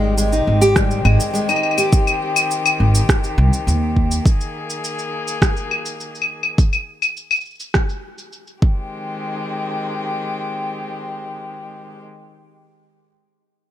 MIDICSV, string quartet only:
0, 0, Header, 1, 2, 480
1, 0, Start_track
1, 0, Key_signature, -4, "major"
1, 0, Tempo, 582524
1, 1584, Time_signature, 4, 2, 24, 8
1, 11296, End_track
2, 0, Start_track
2, 0, Title_t, "String quartet"
2, 0, Program_c, 0, 48
2, 0, Note_on_c, 0, 51, 72
2, 0, Note_on_c, 0, 60, 65
2, 0, Note_on_c, 0, 67, 79
2, 3476, Note_off_c, 0, 67, 0
2, 3479, Note_off_c, 0, 60, 0
2, 3517, Note_on_c, 0, 58, 66
2, 3519, Note_on_c, 0, 68, 78
2, 5399, Note_off_c, 0, 51, 0
2, 5411, Note_off_c, 0, 58, 0
2, 5412, Note_off_c, 0, 68, 0
2, 7113, Note_on_c, 0, 51, 66
2, 7113, Note_on_c, 0, 60, 64
2, 7113, Note_on_c, 0, 67, 77
2, 7115, Note_on_c, 0, 56, 59
2, 9894, Note_off_c, 0, 51, 0
2, 9895, Note_off_c, 0, 56, 0
2, 9895, Note_off_c, 0, 60, 0
2, 9895, Note_off_c, 0, 67, 0
2, 11296, End_track
0, 0, End_of_file